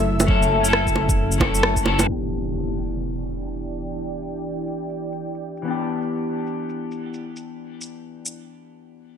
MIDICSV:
0, 0, Header, 1, 6, 480
1, 0, Start_track
1, 0, Tempo, 447761
1, 307, Time_signature, 4, 2, 24, 8
1, 9833, End_track
2, 0, Start_track
2, 0, Title_t, "Analog synth pad"
2, 0, Program_c, 0, 89
2, 0, Note_on_c, 0, 69, 80
2, 0, Note_on_c, 0, 76, 74
2, 0, Note_on_c, 0, 88, 83
2, 2177, Note_off_c, 0, 88, 0
2, 2179, Note_off_c, 0, 69, 0
2, 2185, Note_off_c, 0, 76, 0
2, 2208, Note_on_c, 0, 74, 70
2, 2209, Note_on_c, 0, 64, 71
2, 2209, Note_on_c, 0, 79, 83
2, 8894, Note_off_c, 0, 74, 0
2, 8895, Note_off_c, 0, 64, 0
2, 8895, Note_off_c, 0, 79, 0
2, 9833, End_track
3, 0, Start_track
3, 0, Title_t, "Clean electric guitar"
3, 0, Program_c, 1, 27
3, 0, Note_on_c, 1, 54, 69
3, 0, Note_on_c, 1, 61, 64
3, 0, Note_on_c, 1, 64, 65
3, 0, Note_on_c, 1, 69, 81
3, 265, Note_off_c, 1, 54, 0
3, 278, Note_off_c, 1, 61, 0
3, 285, Note_on_c, 1, 54, 78
3, 293, Note_off_c, 1, 64, 0
3, 296, Note_on_c, 1, 61, 72
3, 306, Note_off_c, 1, 69, 0
3, 313, Note_on_c, 1, 64, 70
3, 326, Note_on_c, 1, 69, 81
3, 634, Note_off_c, 1, 54, 0
3, 647, Note_on_c, 1, 54, 70
3, 653, Note_off_c, 1, 61, 0
3, 662, Note_off_c, 1, 64, 0
3, 668, Note_off_c, 1, 69, 0
3, 676, Note_on_c, 1, 61, 66
3, 705, Note_on_c, 1, 64, 65
3, 735, Note_on_c, 1, 69, 80
3, 1464, Note_off_c, 1, 54, 0
3, 1479, Note_off_c, 1, 61, 0
3, 1480, Note_on_c, 1, 54, 76
3, 1494, Note_off_c, 1, 64, 0
3, 1494, Note_on_c, 1, 61, 67
3, 1508, Note_on_c, 1, 64, 69
3, 1509, Note_off_c, 1, 69, 0
3, 1524, Note_on_c, 1, 69, 87
3, 1951, Note_off_c, 1, 54, 0
3, 1958, Note_off_c, 1, 61, 0
3, 1964, Note_on_c, 1, 54, 79
3, 1965, Note_off_c, 1, 64, 0
3, 1973, Note_off_c, 1, 69, 0
3, 1980, Note_on_c, 1, 61, 76
3, 1996, Note_on_c, 1, 64, 75
3, 2009, Note_on_c, 1, 69, 93
3, 2179, Note_off_c, 1, 54, 0
3, 2183, Note_on_c, 1, 52, 64
3, 2201, Note_off_c, 1, 61, 0
3, 2209, Note_off_c, 1, 64, 0
3, 2212, Note_on_c, 1, 59, 57
3, 2215, Note_off_c, 1, 69, 0
3, 2238, Note_on_c, 1, 62, 57
3, 2270, Note_on_c, 1, 67, 71
3, 6014, Note_off_c, 1, 52, 0
3, 6027, Note_on_c, 1, 52, 69
3, 6037, Note_off_c, 1, 59, 0
3, 6050, Note_off_c, 1, 62, 0
3, 6053, Note_on_c, 1, 59, 64
3, 6066, Note_off_c, 1, 67, 0
3, 6084, Note_on_c, 1, 62, 59
3, 6114, Note_on_c, 1, 67, 74
3, 9833, Note_off_c, 1, 52, 0
3, 9833, Note_off_c, 1, 59, 0
3, 9833, Note_off_c, 1, 62, 0
3, 9833, Note_off_c, 1, 67, 0
3, 9833, End_track
4, 0, Start_track
4, 0, Title_t, "Detuned saw bass"
4, 0, Program_c, 2, 39
4, 0, Note_on_c, 2, 30, 85
4, 2207, Note_off_c, 2, 30, 0
4, 9833, End_track
5, 0, Start_track
5, 0, Title_t, "Impact"
5, 0, Program_c, 3, 103
5, 2222, Note_on_c, 3, 60, 65
5, 4144, Note_off_c, 3, 60, 0
5, 9833, End_track
6, 0, Start_track
6, 0, Title_t, "Drums"
6, 214, Note_on_c, 9, 61, 62
6, 214, Note_on_c, 9, 82, 54
6, 304, Note_on_c, 9, 36, 107
6, 321, Note_off_c, 9, 61, 0
6, 321, Note_off_c, 9, 82, 0
6, 411, Note_off_c, 9, 36, 0
6, 455, Note_on_c, 9, 82, 30
6, 562, Note_off_c, 9, 82, 0
6, 693, Note_on_c, 9, 82, 56
6, 786, Note_on_c, 9, 37, 95
6, 800, Note_off_c, 9, 82, 0
6, 893, Note_off_c, 9, 37, 0
6, 930, Note_on_c, 9, 36, 57
6, 935, Note_on_c, 9, 82, 29
6, 1025, Note_on_c, 9, 61, 38
6, 1037, Note_off_c, 9, 36, 0
6, 1042, Note_off_c, 9, 82, 0
6, 1132, Note_off_c, 9, 61, 0
6, 1169, Note_on_c, 9, 36, 105
6, 1172, Note_on_c, 9, 82, 55
6, 1277, Note_off_c, 9, 36, 0
6, 1279, Note_off_c, 9, 82, 0
6, 1412, Note_on_c, 9, 82, 46
6, 1503, Note_on_c, 9, 36, 101
6, 1509, Note_on_c, 9, 61, 65
6, 1519, Note_off_c, 9, 82, 0
6, 1610, Note_off_c, 9, 36, 0
6, 1616, Note_off_c, 9, 61, 0
6, 1657, Note_on_c, 9, 82, 54
6, 1750, Note_on_c, 9, 37, 95
6, 1765, Note_off_c, 9, 82, 0
6, 1857, Note_off_c, 9, 37, 0
6, 1889, Note_on_c, 9, 36, 58
6, 1894, Note_on_c, 9, 82, 43
6, 1990, Note_on_c, 9, 61, 53
6, 1997, Note_off_c, 9, 36, 0
6, 2001, Note_off_c, 9, 82, 0
6, 2097, Note_off_c, 9, 61, 0
6, 2136, Note_on_c, 9, 61, 63
6, 2136, Note_on_c, 9, 82, 56
6, 2243, Note_off_c, 9, 61, 0
6, 2243, Note_off_c, 9, 82, 0
6, 2613, Note_on_c, 9, 82, 50
6, 2720, Note_off_c, 9, 82, 0
6, 3091, Note_on_c, 9, 82, 49
6, 3198, Note_off_c, 9, 82, 0
6, 3332, Note_on_c, 9, 82, 43
6, 3439, Note_off_c, 9, 82, 0
6, 3573, Note_on_c, 9, 82, 50
6, 3680, Note_off_c, 9, 82, 0
6, 3810, Note_on_c, 9, 82, 43
6, 3917, Note_off_c, 9, 82, 0
6, 4049, Note_on_c, 9, 82, 49
6, 4157, Note_off_c, 9, 82, 0
6, 4533, Note_on_c, 9, 82, 52
6, 4640, Note_off_c, 9, 82, 0
6, 5012, Note_on_c, 9, 82, 50
6, 5119, Note_off_c, 9, 82, 0
6, 5248, Note_on_c, 9, 82, 44
6, 5355, Note_off_c, 9, 82, 0
6, 5492, Note_on_c, 9, 82, 49
6, 5599, Note_off_c, 9, 82, 0
6, 5731, Note_on_c, 9, 82, 41
6, 5838, Note_off_c, 9, 82, 0
6, 5971, Note_on_c, 9, 82, 54
6, 6078, Note_off_c, 9, 82, 0
6, 6452, Note_on_c, 9, 82, 49
6, 6559, Note_off_c, 9, 82, 0
6, 6934, Note_on_c, 9, 82, 50
6, 7042, Note_off_c, 9, 82, 0
6, 7175, Note_on_c, 9, 82, 44
6, 7282, Note_off_c, 9, 82, 0
6, 7414, Note_on_c, 9, 82, 50
6, 7521, Note_off_c, 9, 82, 0
6, 7652, Note_on_c, 9, 82, 42
6, 7759, Note_off_c, 9, 82, 0
6, 7895, Note_on_c, 9, 82, 53
6, 8002, Note_off_c, 9, 82, 0
6, 8375, Note_on_c, 9, 82, 48
6, 8482, Note_off_c, 9, 82, 0
6, 8851, Note_on_c, 9, 82, 52
6, 8958, Note_off_c, 9, 82, 0
6, 9833, End_track
0, 0, End_of_file